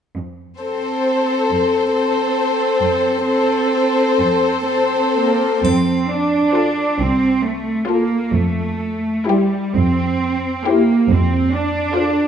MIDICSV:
0, 0, Header, 1, 8, 480
1, 0, Start_track
1, 0, Key_signature, -1, "major"
1, 0, Tempo, 891530
1, 83, Time_signature, 6, 3, 24, 8
1, 2002, Tempo, 964630
1, 2962, Tempo, 896861
1, 4402, Tempo, 941915
1, 5362, Tempo, 863309
1, 6505, End_track
2, 0, Start_track
2, 0, Title_t, "Violin section"
2, 0, Program_c, 0, 48
2, 320, Note_on_c, 0, 72, 26
2, 1026, Note_off_c, 0, 72, 0
2, 1046, Note_on_c, 0, 72, 31
2, 1742, Note_off_c, 0, 72, 0
2, 1762, Note_on_c, 0, 72, 32
2, 2458, Note_off_c, 0, 72, 0
2, 2473, Note_on_c, 0, 72, 30
2, 2953, Note_off_c, 0, 72, 0
2, 3435, Note_on_c, 0, 72, 26
2, 3617, Note_off_c, 0, 72, 0
2, 4154, Note_on_c, 0, 72, 30
2, 4334, Note_off_c, 0, 72, 0
2, 4881, Note_on_c, 0, 72, 29
2, 5064, Note_off_c, 0, 72, 0
2, 5615, Note_on_c, 0, 72, 35
2, 5794, Note_off_c, 0, 72, 0
2, 6340, Note_on_c, 0, 72, 33
2, 6505, Note_off_c, 0, 72, 0
2, 6505, End_track
3, 0, Start_track
3, 0, Title_t, "Violin section"
3, 0, Program_c, 1, 48
3, 327, Note_on_c, 1, 69, 24
3, 1030, Note_off_c, 1, 69, 0
3, 1048, Note_on_c, 1, 69, 29
3, 1743, Note_off_c, 1, 69, 0
3, 1763, Note_on_c, 1, 69, 31
3, 2458, Note_off_c, 1, 69, 0
3, 2475, Note_on_c, 1, 69, 29
3, 2954, Note_off_c, 1, 69, 0
3, 3445, Note_on_c, 1, 69, 29
3, 3622, Note_off_c, 1, 69, 0
3, 4163, Note_on_c, 1, 69, 30
3, 4339, Note_off_c, 1, 69, 0
3, 4885, Note_on_c, 1, 67, 31
3, 5066, Note_off_c, 1, 67, 0
3, 5601, Note_on_c, 1, 67, 32
3, 5786, Note_off_c, 1, 67, 0
3, 6316, Note_on_c, 1, 69, 33
3, 6495, Note_off_c, 1, 69, 0
3, 6505, End_track
4, 0, Start_track
4, 0, Title_t, "French horn section"
4, 0, Program_c, 2, 60
4, 3435, Note_on_c, 2, 65, 29
4, 3438, Note_on_c, 2, 69, 28
4, 3521, Note_off_c, 2, 65, 0
4, 3523, Note_off_c, 2, 69, 0
4, 4162, Note_on_c, 2, 65, 32
4, 4165, Note_on_c, 2, 69, 29
4, 4245, Note_off_c, 2, 65, 0
4, 4247, Note_off_c, 2, 69, 0
4, 4875, Note_on_c, 2, 64, 31
4, 4875, Note_on_c, 2, 67, 30
4, 4963, Note_off_c, 2, 64, 0
4, 4964, Note_off_c, 2, 67, 0
4, 5616, Note_on_c, 2, 64, 31
4, 5618, Note_on_c, 2, 67, 34
4, 5699, Note_off_c, 2, 64, 0
4, 5700, Note_off_c, 2, 67, 0
4, 6331, Note_on_c, 2, 65, 33
4, 6331, Note_on_c, 2, 69, 32
4, 6411, Note_off_c, 2, 65, 0
4, 6411, Note_off_c, 2, 69, 0
4, 6505, End_track
5, 0, Start_track
5, 0, Title_t, "Viola section"
5, 0, Program_c, 3, 48
5, 319, Note_on_c, 3, 60, 25
5, 1026, Note_off_c, 3, 60, 0
5, 1044, Note_on_c, 3, 60, 29
5, 1741, Note_off_c, 3, 60, 0
5, 1753, Note_on_c, 3, 60, 34
5, 2454, Note_off_c, 3, 60, 0
5, 2476, Note_on_c, 3, 60, 28
5, 2955, Note_off_c, 3, 60, 0
5, 3447, Note_on_c, 3, 65, 27
5, 3623, Note_off_c, 3, 65, 0
5, 4158, Note_on_c, 3, 65, 29
5, 4337, Note_off_c, 3, 65, 0
5, 4876, Note_on_c, 3, 64, 30
5, 5061, Note_off_c, 3, 64, 0
5, 5603, Note_on_c, 3, 64, 31
5, 5788, Note_off_c, 3, 64, 0
5, 6327, Note_on_c, 3, 65, 34
5, 6500, Note_off_c, 3, 65, 0
5, 6505, End_track
6, 0, Start_track
6, 0, Title_t, "Cello section"
6, 0, Program_c, 4, 48
6, 85, Note_on_c, 4, 41, 32
6, 717, Note_off_c, 4, 41, 0
6, 811, Note_on_c, 4, 41, 35
6, 1419, Note_off_c, 4, 41, 0
6, 1513, Note_on_c, 4, 41, 42
6, 2142, Note_off_c, 4, 41, 0
6, 2237, Note_on_c, 4, 41, 42
6, 2702, Note_off_c, 4, 41, 0
6, 2718, Note_on_c, 4, 58, 34
6, 2943, Note_off_c, 4, 58, 0
6, 2961, Note_on_c, 4, 60, 36
6, 3205, Note_off_c, 4, 60, 0
6, 3206, Note_on_c, 4, 62, 41
6, 3678, Note_on_c, 4, 60, 41
6, 3684, Note_off_c, 4, 62, 0
6, 3918, Note_on_c, 4, 57, 37
6, 3922, Note_off_c, 4, 60, 0
6, 4156, Note_on_c, 4, 58, 37
6, 4160, Note_off_c, 4, 57, 0
6, 4392, Note_off_c, 4, 58, 0
6, 4393, Note_on_c, 4, 57, 39
6, 4877, Note_off_c, 4, 57, 0
6, 4877, Note_on_c, 4, 55, 37
6, 5124, Note_off_c, 4, 55, 0
6, 5124, Note_on_c, 4, 60, 42
6, 5605, Note_on_c, 4, 58, 41
6, 5609, Note_off_c, 4, 60, 0
6, 5851, Note_off_c, 4, 58, 0
6, 5856, Note_on_c, 4, 60, 39
6, 6092, Note_off_c, 4, 60, 0
6, 6092, Note_on_c, 4, 62, 47
6, 6505, Note_off_c, 4, 62, 0
6, 6505, End_track
7, 0, Start_track
7, 0, Title_t, "Double bass section"
7, 0, Program_c, 5, 48
7, 2954, Note_on_c, 5, 41, 35
7, 3550, Note_off_c, 5, 41, 0
7, 3675, Note_on_c, 5, 36, 32
7, 4269, Note_off_c, 5, 36, 0
7, 4391, Note_on_c, 5, 41, 36
7, 4992, Note_off_c, 5, 41, 0
7, 5119, Note_on_c, 5, 41, 36
7, 5719, Note_off_c, 5, 41, 0
7, 5849, Note_on_c, 5, 41, 42
7, 6429, Note_off_c, 5, 41, 0
7, 6505, End_track
8, 0, Start_track
8, 0, Title_t, "Drums"
8, 2961, Note_on_c, 9, 81, 22
8, 3015, Note_off_c, 9, 81, 0
8, 6505, End_track
0, 0, End_of_file